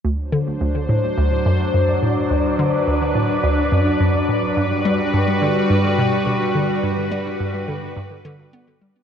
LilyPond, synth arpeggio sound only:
\new Staff \with { instrumentName = "Synth arpeggio sound" } { \clef bass \time 4/4 \key d \mixolydian \tempo 4 = 106 d,8 d8 d,8 a,8 d,8 fis,8 fis,8 a,8 | d,8 d8 d,8 a,8 d,8 fis,8 fis,8 a,8 | g,8 g8 g,8 d8 g,8 b,8 b,8 d8 | g,8 g8 g,8 d8 g,8 d8 b8 g8 | }